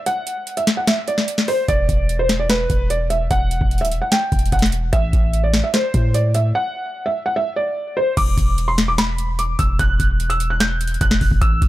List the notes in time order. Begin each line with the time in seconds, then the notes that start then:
0.06 F#5, closed hi-hat
0.27 closed hi-hat
0.47 closed hi-hat
0.57 E5, closed hi-hat
0.67 snare, closed hi-hat
0.77 F#5
0.87 E5, snare, closed hi-hat
1.08 D5, closed hi-hat
1.18 snare
1.28 closed hi-hat
1.38 snare
1.48 C5, open hi-hat
1.68 E1 D5, kick, closed hi-hat
1.89 E1, kick, closed hi-hat
2.09 closed hi-hat
2.19 C5
2.29 snare, closed hi-hat
2.40 D5
2.50 B4, snare, closed hi-hat
2.70 E1, kick, closed hi-hat
2.90 D5, closed hi-hat
3.10 E5, closed hi-hat
3.31 E1 F#5, kick, closed hi-hat
3.51 closed hi-hat
3.61 E1, kick
3.71 closed hi-hat
3.78 D1 E5, closed hi-hat
3.85 closed hi-hat
3.91 E1, closed hi-hat
4.02 F#5
4.12 G5, snare, closed hi-hat
4.32 E1, kick, closed hi-hat
4.39 closed hi-hat
4.46 closed hi-hat
4.52 E1 F#5, kick, closed hi-hat
4.59 snare, closed hi-hat
4.66 closed hi-hat
4.72 closed hi-hat
4.93 A1 E5, kick, closed hi-hat
5.13 A1, kick, closed hi-hat
5.33 closed hi-hat
5.44 D5
5.54 snare, closed hi-hat
5.64 E5
5.74 C5, snare, closed hi-hat
5.94 A2, kick, closed hi-hat
6.14 D5, closed hi-hat
6.34 E5, closed hi-hat
6.55 F#5
7.06 E5
7.26 F#5
7.36 E5
7.56 D5
7.97 C5
8.17 E1 D6, kick, closed hi-hat, crash
8.38 E1, kick, closed hi-hat
8.58 closed hi-hat
8.68 C6
8.78 snare, closed hi-hat
8.88 D6
8.98 B5, snare, closed hi-hat
9.18 closed hi-hat
9.39 D6, closed hi-hat
9.59 E1 E6, kick, closed hi-hat
9.79 E1 F#6, kick, closed hi-hat
10.00 E1, kick, closed hi-hat
10.20 closed hi-hat
10.30 E6, closed hi-hat
10.40 closed hi-hat
10.50 F#6
10.60 G6, snare, closed hi-hat
10.81 closed hi-hat
10.87 closed hi-hat
10.94 closed hi-hat
11.01 E1 F#6, kick, closed hi-hat
11.11 snare
11.21 E1, kick, open hi-hat
11.31 E1, kick
11.41 A1 E6, kick, closed hi-hat
11.62 A1, kick, closed hi-hat